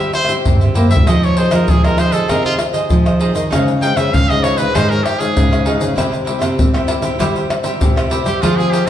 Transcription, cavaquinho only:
0.00 G4 C5 E5
0.12 muted cavaquinho stroke
0.28 G4 C5 E5
0.61 G4 C5 E5
0.74 E4 G4 C5 E5
0.89 G4 C5 E5
1.07 F4 G#4 C5 D#5
1.23 muted cavaquinho stroke
1.37 F4 G#4 C5 D#5
1.51 G#4 C5 D#5
1.84 G#4 C5 D#5
1.97 F4 G#4 C5 D#5
2.12 G#4 C5 D#5
2.28 F4 G#4 C5 D#5
2.44 G#4 C5 D#5
2.58 muted cavaquinho stroke
2.73 G#4 C5 D#5
3.05 G#4 C5 D#5
3.19 F4 G#4 C5 D#5
3.33 G#4 C5 D#5
3.50 D#4 G#4 C#5 F5
3.67 muted cavaquinho stroke
3.82 D#4 G#4 C#5 F5
3.97 G#4 C#5 F5
4.28 G#4 C#5 F5
4.42 D#4 G#4 C#5 F5
4.58 G#4 C#5 F5
4.75 D#4 G#4 C#5 F5
4.90 G#4 C#5 F5
5.03 muted cavaquinho stroke
5.18 G#4 C#5 F5
5.51 G#4 C#5 F5
5.65 D#4 G#4 C#5 F5
5.80 G#4 C#5 F5
5.95 E4 G4 C5 E5
6.12 muted cavaquinho stroke
6.25 E4 G4 C5 E5
6.39 G4 C5 E5
6.73 G4 C5 E5
6.87 E4 G4 C5 E5
7.02 G4 C5 E5
7.19 E4 G4 C5 E5
7.35 G4 C5 E5
7.50 muted cavaquinho stroke
7.63 G4 C5 E5
7.96 G4 C5 E5
8.10 E4 G4 C5 E5
8.26 G4 C5 E5
8.42 F4 G#4 C5 F5
8.58 muted cavaquinho stroke
8.71 F4 G#4 C5 F5

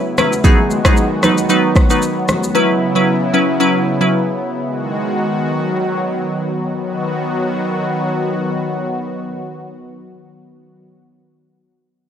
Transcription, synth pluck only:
0.18 F#3 C#4 E4 B4
0.44 F#3 B3 D#4 G#4
0.85 F#3 B3 D#4 G#4
1.23 F#3 B3 D#4 B4
1.49 F#3 B3 D#4 B4
1.90 F#3 B3 D#4 B4
2.55 F#3 C#4 E4 B4
2.95 F#3 C#4 E4 B4
3.34 F#3 C#4 E4 B4
3.60 F#3 C#4 E4 B4
4.01 F#3 C#4 E4 B4

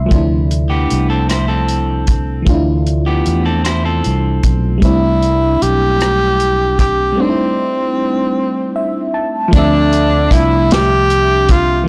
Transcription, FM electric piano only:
Already playing: E4 E5 C6
0.06 F3 A3
0.11 C3 D4
0.16 E4
2.42 E3 A3
2.49 D4 E4 F4
4.78 G3 A3
4.83 C4 D4
4.88 E4
7.12 G3 A3
7.18 C4 D4
7.23 D#4
7.29 E4
8.76 E5
9.14 A5
9.48 F3 A3
9.53 C4 D4
9.58 E5
11.84 E3

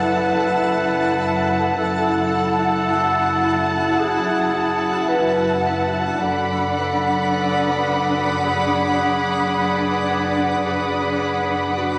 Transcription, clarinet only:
Already playing: B4
1.78 A4
4.00 G#4
5.08 B4
6.20 A4
8.44 G#4
10.67 G#4
11.78 F#4

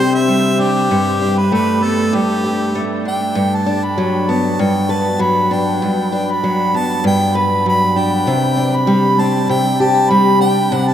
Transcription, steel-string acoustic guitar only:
Already playing: C3 G3 C4 D4 G4
0.28 G3
0.59 D4
0.91 G2
1.21 D4
1.52 A3
1.81 B3
2.13 G2
2.44 G4
2.75 A3
3.05 D4
3.35 G2
3.66 D4
3.98 F#3
4.29 B3
4.59 G2
4.89 B4
5.19 F#3
5.51 D4
5.82 G2
6.12 D4
6.44 F#3
6.74 B3
7.04 G2
7.35 B4
7.66 F#3
7.96 D4
8.27 C3
8.57 D4
8.87 G3
9.19 C4
9.49 C3
9.80 G4
10.10 G3
10.40 D4
10.72 C3

